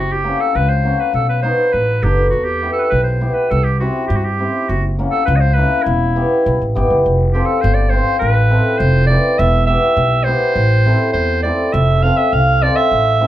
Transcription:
Already playing: F#1 F#4
0.12 G4
0.24 A#3 C#4 F#4
0.40 A4
0.55 C#2 B4
0.69 C5
0.84 A#3 C#4 F#4
1.01 B4
1.13 B1 A4
1.29 B4
1.42 B3 D#4 F#4 C5
1.73 A1 B4
2.03 F#1 B3 D#4 G4 A4
2.30 E2 F#4
2.44 G4
2.62 B3 E4 G4
2.73 A4
2.79 A4 B4
2.90 B1 B4
3.04 C5
3.21 B3 E4 G4
3.34 B4
3.50 C2 A4
3.64 G4
3.80 C4 E4 F#4 G4
4.07 G2 G4
4.16 F#4
4.25 G4
4.39 C4 E4 G4
4.69 F#1 F#4
4.99 A#3 C#4 F#4
5.11 A4
5.26 C#2 B4
5.36 D#5
5.40 C5
5.54 A#3 C#4 E4 B4
5.82 E4
5.86 E1
6.16 B3 E4 G4
6.46 B1
6.61 A1
6.75 G1 B3 E4 G4
6.90 F#1
7.06 F1
7.32 C4 F4 G4 A4
7.45 A4
7.61 G1 C5
7.74 D5
7.90 C4 F4 C5
8.19 A1 B4
8.50 C4 E4 A4
8.78 F1 C5
9.07 C4 E4 D5
9.11 B4
9.39 E1 E5
9.67 B3 E4 G4 E5
9.97 B1
10.24 B3 E4 C5
10.28 G4
10.56 A1
10.86 C4 E4 A4
11.13 E2 C5
11.43 C4 E4 A4 D5
11.73 F1 E5
12.03 C4 F4 A4 F5
12.17 E5
12.33 C2 F5
12.61 C4 F4 A4 D5
12.76 E5
12.91 A1
13.20 C4 E4 A4

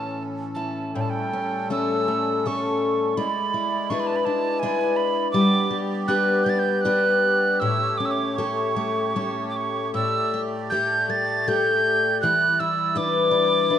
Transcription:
Already playing: A2 E3 C#4 A4 A5
0.55 E4 A5
0.93 A2 G3 C#4 A4 G5
1.01 A5
1.10 G5
1.33 C#4
1.70 A3 C#4 A4 E6
2.08 A3
2.46 A3 C#4 A4 C#6
3.16 G#3 E4 D5 B5
3.54 E4
3.90 D4 E4 B4 C#6
4.00 B5
4.07 A5
4.16 B5
4.25 D4 A5
4.59 D4 E4 G#5
4.64 B4
4.96 B5
5.32 G3 B3 D6
5.36 G4
5.71 G4
6.08 D4 G4 B4 F#6
6.44 D4 G6
6.49 A6
6.59 G6
6.81 D4 F#6
6.85 G4 B4
7.60 A2 A3 C#5 E6
7.98 C#4 D6
8.05 E6
8.11 D6
8.36 A3 C#4 A4 C#6
8.76 A3
9.16 A3 C#4 A4
9.49 D6
9.57 C#6
9.94 A2 A3 D5 E6
10.34 G4
10.70 A3 G4 A4 G6
11.10 A3 A6
11.48 A3 G4 A4 G6
12.21 E3 G3 E4 F#6
12.60 E4 E6
12.96 D4 E4 B4 D6
13.31 D4
13.70 D4 E4 B4

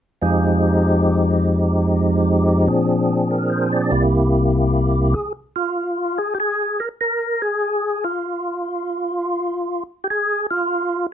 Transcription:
0.22 F2 F3 G#3 D#4 G4
2.67 A#2 F3 C4 D4 G#4
3.31 A#4
3.50 C5
3.72 D5
3.91 C2 C3 A#3 E4 G4
5.14 G#4
5.56 F4
6.18 G#4
6.35 G4
6.40 G#4
6.80 A#4
7.01 A#4
7.42 G#4
8.04 F4
10.04 G4
10.10 G#4
10.51 F4

